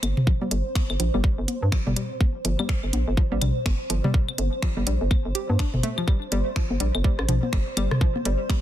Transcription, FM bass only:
0.03 0.13 G1 medium
0.51 0.62 G1 loud
0.90 0.97 G1 medium
1.00 1.10 A#1 medium
1.14 1.21 G1 loud
1.38 1.45 G1 loud
1.63 1.70 G2 medium
1.87 1.94 G1 loud
2.45 2.55 G1 loud
2.83 2.91 G1 medium
2.93 3.04 A#1 medium
3.08 3.15 G1 loud
3.32 3.39 A1 loud
3.42 3.52 A#1 medium
3.66 3.76 G1 medium
3.90 4.01 G1 medium
4.38 4.49 G1 loud
4.77 4.84 G1 medium
4.87 4.97 A#1 medium
5.01 5.08 G1 loud
5.25 5.33 G1 medium
5.50 5.57 G2 medium
5.74 5.81 G1 loud
6.32 6.43 G1 medium
6.71 6.78 G1 medium
6.80 6.91 A#1 loud
6.95 7.02 G1 loud
7.19 7.26 A1 loud
7.29 7.39 A#1 medium
7.53 7.63 G1 medium
7.77 7.88 G1 medium
8.25 8.36 G1 loud

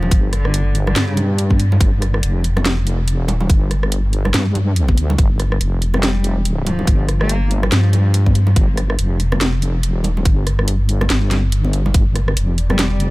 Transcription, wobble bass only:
0.11 0.95 G1 medium
0.96 1.79 G2 loud
1.81 2.21 G1 medium
2.23 3.11 F1 loud
3.11 3.36 E1 loud
3.36 3.48 D#1 loud
3.50 4.33 G1 medium
4.34 4.96 G2 loud
4.97 5.17 D2 loud
5.18 5.59 G1 medium
5.61 6.86 F1 medium
6.87 7.70 G1 medium
7.72 8.55 G2 medium
8.56 8.97 G1 medium
8.99 9.87 F1 loud
9.87 10.12 E1 loud
10.12 10.24 D#1 loud
10.25 11.09 G1 medium
11.10 11.93 G1 loud
11.94 12.35 G1 loud
12.37 13.10 F1 loud

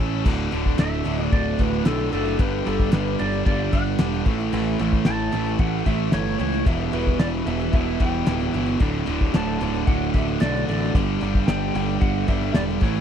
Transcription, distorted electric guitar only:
0.00 0.25 A3 medium
0.00 0.26 C#4 medium
0.00 0.25 E4 medium
0.00 0.26 A4 medium
0.25 0.50 D2 medium
0.25 0.51 A2 medium
0.25 0.51 D3 loud
0.52 0.77 D2 medium
0.52 0.78 A2 medium
0.52 0.78 D3 loud
0.78 1.04 D2 medium
0.78 1.04 A2 loud
0.78 1.04 D3 loud
1.05 1.30 D2 medium
1.05 1.30 A2 medium
1.05 1.31 D3 medium
1.32 1.58 D2 loud
1.32 1.58 A2 loud
1.32 1.59 D3 loud
1.59 1.83 D2 loud
1.59 1.84 A2 loud
1.59 1.85 D3 loud
1.85 2.11 D2 medium
1.85 2.11 A2 medium
1.85 2.12 D3 medium
2.12 2.37 D2 medium
2.12 2.38 A2 medium
2.12 2.38 D3 medium
2.38 2.65 G2 medium
2.38 2.65 D3 medium
2.38 2.65 G3 medium
2.66 2.92 G2 medium
2.66 2.92 D3 medium
2.66 2.93 G3 loud
2.93 3.19 G2 loud
2.93 3.19 D3 medium
2.93 3.19 G3 loud
3.20 3.45 G2 medium
3.20 3.46 D3 medium
3.20 3.46 G3 medium
3.46 3.71 G2 loud
3.46 3.72 D3 loud
3.46 3.73 G3 loud
3.73 3.98 G2 medium
3.73 3.98 D3 loud
3.73 3.99 G3 loud
3.99 4.25 G2 medium
3.99 4.25 D3 medium
3.99 4.25 G3 medium
4.26 4.51 A2 loud
4.26 4.52 E3 loud
4.26 4.52 A3 loud
4.52 4.78 A2 medium
4.52 4.79 E3 loud
4.52 4.79 A3 medium
4.79 5.05 A2 medium
4.79 5.06 E3 medium
4.79 5.06 A3 loud
5.06 5.31 A2 medium
5.06 5.32 E3 loud
5.06 5.31 A3 medium
5.32 5.58 A2 medium
5.32 5.58 E3 medium
5.32 5.59 A3 medium
5.59 5.84 A2 loud
5.59 5.85 E3 loud
5.59 5.85 A3 loud
5.85 6.11 A2 medium
5.85 6.12 E3 medium
5.85 6.12 A3 loud
6.12 6.38 A2 medium
6.12 6.38 E3 medium
6.12 6.38 A3 loud
6.39 6.65 A2 medium
6.39 6.65 E3 loud
6.39 6.65 A3 medium
6.66 6.92 E2 medium
6.66 6.92 B2 loud
6.66 6.93 E3 loud
6.93 7.18 E2 medium
6.93 7.19 B2 loud
6.93 7.19 E3 loud
7.20 7.45 E2 loud
7.20 7.46 B2 loud
7.20 7.46 E3 medium
7.46 7.72 E2 medium
7.46 7.72 B2 medium
7.46 7.73 E3 medium
7.73 7.99 E2 medium
7.73 8.00 B2 loud
7.73 8.00 E3 loud
8.00 8.25 E2 loud
8.00 8.26 B2 medium
8.00 8.27 E3 medium
8.27 8.52 E2 medium
8.27 8.53 B2 medium
8.27 8.53 E3 loud
8.53 8.79 E2 medium
8.53 8.79 B2 loud
8.53 8.79 E3 medium
8.80 9.05 D2 medium
8.80 9.05 A2 medium
8.80 9.05 D3 loud
9.06 9.31 D2 medium
9.06 9.32 A2 loud
9.06 9.32 D3 medium
9.32 9.58 D2 loud
9.32 9.59 A2 medium
9.32 9.59 D3 loud
9.59 9.85 D2 medium
9.59 9.86 A2 medium
9.59 9.86 D3 medium
9.87 10.13 D2 loud
9.87 10.13 A2 loud
9.87 10.14 D3 loud
10.14 10.39 D2 medium
10.14 10.40 A2 loud
10.14 10.40 D3 loud
10.41 10.67 D2 medium
10.41 10.67 A2 medium
10.41 10.68 D3 loud
10.68 10.93 D2 medium
10.68 10.93 A2 medium
10.68 10.93 D3 medium
10.94 11.19 G2 medium
10.94 11.20 D3 medium
10.94 11.20 G3 medium
11.20 11.45 G2 medium
11.20 11.46 D3 medium
11.20 11.46 G3 medium
11.47 11.73 G2 medium
11.47 11.74 D3 medium
11.47 11.74 G3 loud
11.74 12.00 G2 medium
11.74 12.01 D3 medium
11.74 12.01 G3 medium
12.01 12.27 G2 loud
12.01 12.27 D3 loud
12.01 12.27 G3 loud
12.28 12.53 G2 loud
12.28 12.53 D3 loud
12.28 12.54 G3 loud
12.54 12.80 G2 medium
12.54 12.80 D3 medium
12.54 12.80 G3 medium
12.82 13.01 A2 loud
12.82 13.01 E3 loud
12.82 13.01 A3 loud

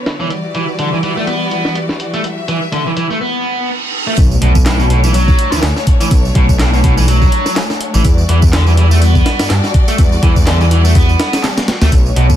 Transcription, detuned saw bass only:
4.18 4.36 B1 loud
4.42 5.34 B1 medium
5.53 5.61 D2 soft
5.63 5.73 D2 medium
6.11 6.30 B1 loud
6.35 7.28 B1 medium
7.95 8.02 A1 medium
8.05 8.23 E2 loud
8.29 9.21 E2 medium
9.40 9.48 G2 soft
9.50 9.60 G2 medium
9.99 10.17 E2 loud
10.23 11.15 E2 medium
11.82 11.89 D2 loud
11.92 12.11 B1 loud
12.16 12.36 B1 medium

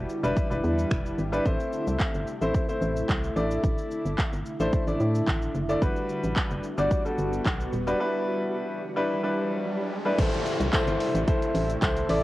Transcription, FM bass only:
0.24 0.34 E1 medium
0.51 0.61 E1 loud
0.64 0.85 E2 loud
0.91 1.13 E1 loud
1.18 1.40 G#1 medium
1.46 1.57 A1 loud
1.87 1.97 C2 medium
2.14 2.25 G1 medium
2.42 2.52 A1 medium
2.82 3.03 A1 loud
3.09 3.31 C2 loud
3.36 3.58 A1 loud
3.64 3.75 A1 loud
4.05 4.16 G1 medium
4.33 4.43 G1 medium
4.60 4.70 A1 medium
4.87 4.97 A1 loud
5.00 5.22 A2 medium
5.27 5.49 A1 loud
5.55 5.76 F#1 medium
5.82 5.93 G1 loud
6.24 6.34 A1 medium
6.51 6.61 F#1 medium
6.78 6.88 G1 medium
7.18 7.40 G1 medium
7.45 7.67 B1 loud
7.73 7.94 D#1 medium
10.18 10.30 A1 loud
10.60 10.70 C2 medium
10.87 10.97 G1 medium
11.14 11.25 A1 medium
11.55 11.76 A1 loud
11.82 12.04 C2 loud
12.09 12.23 A1 loud

